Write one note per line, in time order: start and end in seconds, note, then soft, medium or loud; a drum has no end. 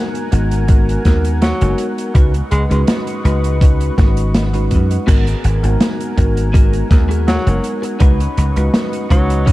0.00 0.28 G#3 medium
0.00 0.28 B3 medium
0.00 0.28 D#4 medium
0.00 0.28 F#4 medium
0.00 0.28 A#4 loud
0.00 2.12 A#4 medium
0.00 5.04 F#5 medium
0.00 2.12 G#5 medium
0.15 closed hi-hat medium
0.31 0.97 G#1 medium
0.31 0.64 G#3 medium
0.31 0.64 B3 medium
0.31 0.65 D#4 medium
0.31 0.65 F#4 medium
0.31 0.65 A#4 medium
0.31 closed hi-hat medium
0.51 closed hi-hat medium
0.68 1.01 G#3 medium
0.68 1.01 B3 medium
0.68 1.01 D#4 medium
0.68 1.01 F#4 medium
0.68 1.02 A#4 medium
0.68 kick loud
0.68 closed hi-hat medium
0.89 closed hi-hat medium
1.04 1.51 D#2 medium
1.04 1.56 G#3 medium
1.04 1.56 B3 medium
1.04 1.57 D#4 medium
1.04 1.57 F#4 medium
1.04 1.57 A#4 medium
1.04 kick medium
1.04 snare medium
1.04 closed hi-hat medium
1.25 closed hi-hat medium
1.42 1.86 F#3 medium
1.42 snare loud
1.42 closed hi-hat medium
1.60 1.73 F#1 medium
1.60 2.11 G#3 medium
1.60 2.11 B3 medium
1.60 2.11 D#4 medium
1.60 2.11 F#4 medium
1.60 2.11 A#4 medium
1.60 closed hi-hat medium
1.78 closed hi-hat medium
1.98 closed hi-hat medium
2.14 2.40 C#2 loud
2.14 2.32 G#3 medium
2.14 2.32 C#4 medium
2.14 2.32 D#4 medium
2.14 2.32 F#4 medium
2.14 2.32 B4 loud
2.14 5.05 B4 medium
2.14 5.05 D#5 medium
2.14 5.05 C#6 medium
2.14 kick loud
2.14 closed hi-hat medium
2.34 closed hi-hat medium
2.51 2.65 C#2 medium
2.51 2.64 G#3 medium
2.51 closed hi-hat medium
2.70 2.83 C#2 medium
2.70 3.20 G#3 medium
2.70 2.82 G#3 medium
2.70 3.20 C#4 medium
2.70 3.21 D#4 medium
2.70 3.21 F#4 medium
2.70 3.21 B4 medium
2.70 closed hi-hat medium
2.88 snare loud
2.88 closed hi-hat medium
3.07 closed hi-hat medium
3.24 3.89 C#2 medium
3.24 3.57 G#3 medium
3.24 3.57 C#4 medium
3.24 3.57 D#4 medium
3.24 3.58 F#4 medium
3.24 3.58 B4 medium
3.24 closed hi-hat medium
3.44 closed hi-hat medium
3.61 3.94 G#3 medium
3.61 3.94 C#4 medium
3.61 3.94 D#4 medium
3.61 3.94 F#4 medium
3.61 3.94 B4 medium
3.61 kick loud
3.61 closed hi-hat loud
3.81 closed hi-hat medium
3.97 4.73 G#1 medium
3.97 4.49 G#3 medium
3.97 4.49 C#4 medium
3.97 4.49 D#4 medium
3.97 4.50 F#4 medium
3.97 4.50 B4 medium
3.97 kick loud
3.97 snare medium
3.97 closed hi-hat medium
4.17 closed hi-hat medium
4.34 snare loud
4.34 closed hi-hat loud
4.53 5.03 G#3 medium
4.53 5.04 C#4 medium
4.53 5.04 D#4 medium
4.53 5.04 F#4 medium
4.53 5.04 B4 medium
4.53 closed hi-hat medium
4.71 4.97 F#2 medium
4.71 kick medium
4.71 closed hi-hat medium
4.91 closed hi-hat medium
5.07 5.33 G#1 medium
5.07 5.24 G#3 medium
5.07 5.63 B3 loud
5.07 5.25 B3 medium
5.07 5.25 D#4 medium
5.07 5.64 F#4 loud
5.07 5.25 F#4 medium
5.07 5.64 G#4 loud
5.07 7.98 A#4 medium
5.07 5.25 A#4 loud
5.07 5.64 A#4 loud
5.07 9.52 F#5 medium
5.07 7.98 G#5 medium
5.07 kick loud
5.07 closed hi-hat loud
5.07 crash loud
5.27 closed hi-hat medium
5.44 5.57 G#1 medium
5.44 closed hi-hat medium
5.63 5.75 G#1 medium
5.63 6.13 G#3 medium
5.63 6.13 B3 medium
5.63 6.13 D#4 medium
5.63 6.14 F#4 medium
5.63 6.14 A#4 medium
5.63 closed hi-hat medium
5.80 snare loud
5.80 closed hi-hat loud
6.00 closed hi-hat medium
6.17 6.82 G#1 medium
6.17 6.50 G#3 medium
6.17 6.50 B3 medium
6.17 6.50 D#4 medium
6.17 6.50 F#4 medium
6.17 6.51 A#4 medium
6.17 muted clean electric guitar stroke soft
6.17 kick medium
6.17 closed hi-hat medium
6.37 closed hi-hat medium
6.53 6.86 G#3 medium
6.53 6.73 B3 medium
6.53 6.87 B3 medium
6.53 6.87 D#4 medium
6.53 6.73 F#4 medium
6.53 6.87 F#4 medium
6.53 6.74 G#4 medium
6.53 6.74 A#4 medium
6.53 6.87 A#4 loud
6.53 kick loud
6.53 closed hi-hat loud
6.73 closed hi-hat medium
6.90 7.37 D#2 medium
6.90 7.42 G#3 medium
6.90 7.42 B3 medium
6.90 7.42 D#4 medium
6.90 7.42 F#4 medium
6.90 7.42 A#4 medium
6.90 muted clean electric guitar stroke soft
6.90 kick loud
6.90 snare medium
6.90 closed hi-hat medium
7.09 7.46 B3 medium
7.09 7.46 F#4 medium
7.09 7.47 G#4 medium
7.09 7.47 A#4 loud
7.09 closed hi-hat medium
7.28 7.72 F#3 medium
7.28 snare loud
7.28 closed hi-hat medium
7.46 7.58 F#1 loud
7.46 7.96 G#3 medium
7.46 7.96 B3 medium
7.46 7.96 D#4 medium
7.46 7.97 F#4 medium
7.46 7.97 A#4 medium
7.46 closed hi-hat medium
7.64 closed hi-hat medium
7.82 muted clean electric guitar stroke medium
7.82 closed hi-hat medium
7.99 8.26 C#2 loud
7.99 8.17 G#3 loud
7.99 8.56 C#4 loud
7.99 8.17 C#4 medium
7.99 8.17 D#4 medium
7.99 8.56 D#4 loud
7.99 8.18 F#4 medium
7.99 8.57 F#4 loud
7.99 9.52 B4 medium
7.99 8.18 B4 loud
7.99 8.57 B4 loud
7.99 9.52 D#5 medium
7.99 9.52 C#6 medium
7.99 kick loud
7.99 closed hi-hat loud
8.20 closed hi-hat medium
8.38 8.50 C#2 medium
8.38 closed hi-hat medium
8.56 8.68 C#2 loud
8.56 9.06 G#3 medium
8.56 9.06 C#4 medium
8.56 9.06 D#4 medium
8.56 9.07 F#4 medium
8.56 9.07 B4 medium
8.56 closed hi-hat medium
8.74 snare loud
8.74 closed hi-hat loud
8.93 closed hi-hat medium
9.09 9.52 C#2 medium
9.09 9.52 F#3 loud
9.09 9.43 G#3 medium
9.09 9.43 C#4 medium
9.09 9.43 D#4 medium
9.09 9.43 F#4 medium
9.09 9.43 B4 medium
9.09 muted clean electric guitar stroke soft
9.09 kick medium
9.09 closed hi-hat medium
9.30 closed hi-hat medium
9.46 9.52 G#3 medium
9.46 9.52 C#4 medium
9.46 9.52 D#4 medium
9.46 9.52 F#4 medium
9.46 9.52 B4 loud
9.46 kick loud
9.46 closed hi-hat loud